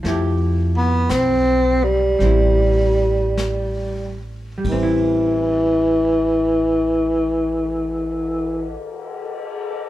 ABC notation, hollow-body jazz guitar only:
X:1
M:4/4
L:1/8
Q:"Swing" 1/4=46
K:Am
V:1 name="Hollow-body jazz guitar"
[F,A,EG]4 [G,CE]4 | [G,CE]8 |]